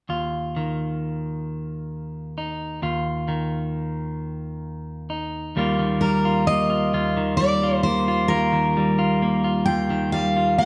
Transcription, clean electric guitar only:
0.09 2.82 D#2 soft
0.09 2.37 F4 soft
0.56 3.27 D#3 soft
2.38 2.83 D#4 soft
2.82 5.55 D#2 medium
2.82 5.10 F4 soft
3.28 5.55 D#3 soft
5.10 5.58 D#4 soft
5.56 6.93 D#2 medium
5.56 5.78 D#3 soft
5.56 6.02 G3 soft
5.56 6.47 A#3 soft
5.56 6.25 F4 soft
5.79 7.16 D#3 soft
6.02 7.39 G3 soft
6.25 6.70 F4 soft
6.48 7.85 A#3 soft
6.70 6.94 F4 soft
6.93 8.28 D#2 medium
6.93 7.63 F4 medium
7.17 8.51 D#3 soft
7.40 8.76 G3 soft
7.63 8.08 F4 soft
7.85 9.22 A#3 soft
8.08 8.30 F4 medium
8.29 9.66 D#2 medium
8.29 8.98 F4 medium
8.53 9.89 D#3 soft
8.77 10.13 G3 soft
8.99 9.44 F4 medium
9.22 10.59 A#3 soft
9.44 9.68 F4 soft
9.67 10.65 D#2 medium
9.67 10.36 F4 soft
9.90 10.65 D#3 medium
10.14 10.65 G3 soft
10.37 10.65 F4 soft
10.60 10.65 A#3 soft

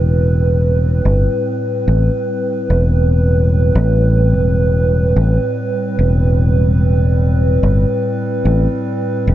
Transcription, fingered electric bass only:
0.00 1.02 E1 medium
1.05 1.26 G1 medium
1.88 2.08 A1 medium
2.70 3.71 E1 medium
3.75 4.34 A1 loud
4.34 5.13 E1 medium
5.16 5.37 A1 medium
5.99 7.60 E1 medium
7.63 7.83 G1 loud
8.45 8.66 A1 loud
9.27 9.35 E1 loud

